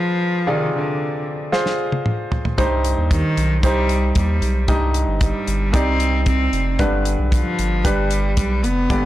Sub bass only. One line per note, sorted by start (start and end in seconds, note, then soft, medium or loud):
2.58 2.95 C2 medium
2.98 3.22 D#2 medium
3.37 3.62 B1 medium
3.63 4.12 C2 medium
4.16 4.41 D#2 medium
4.42 4.67 B1 medium
4.68 5.05 C2 medium
5.08 5.32 G1 medium
5.48 5.72 G1 medium
5.74 6.49 C2 medium
6.52 6.77 F1 medium
6.80 7.16 G1 medium
7.19 7.43 B1 medium
7.59 7.83 G1 medium
7.85 8.39 G1 medium
8.37 8.64 B1 medium
8.63 8.88 F1 medium
8.90 9.05 G1 medium